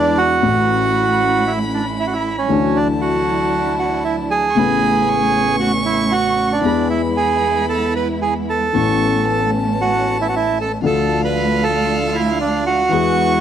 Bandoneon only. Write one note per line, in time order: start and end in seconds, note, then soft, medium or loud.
0.00 0.18 D4 medium
0.18 1.52 F#4 loud
1.47 1.59 E4 medium
1.74 1.86 D4 medium
2.00 2.06 E4 medium
2.07 2.14 F#4 medium
2.13 2.36 E4 medium
2.38 2.78 C#4 medium
2.76 2.88 D4 medium
3.01 3.75 F#4 medium
3.79 4.04 F#4 medium
4.04 4.16 E4 medium
4.31 5.56 G#4 loud
5.60 5.72 F#4 medium
5.86 6.13 E4 medium
6.12 6.52 F#4 medium
6.52 6.88 D4 medium
6.90 7.02 E4 medium
7.17 7.66 G#4 medium
7.69 7.94 A4 medium
7.96 8.08 B4 medium
8.22 8.34 G#4 medium
8.50 9.51 A4 medium
9.81 10.18 F#4 medium
10.21 10.27 E4 medium
10.29 10.35 F#4 medium
10.36 10.58 E4 medium
10.61 10.72 A4 medium
10.86 11.22 A4 medium
11.25 11.64 B4 medium
11.63 12.16 A4 medium
12.15 12.39 E4 medium
12.41 12.65 D4 medium
12.66 13.40 F#4 medium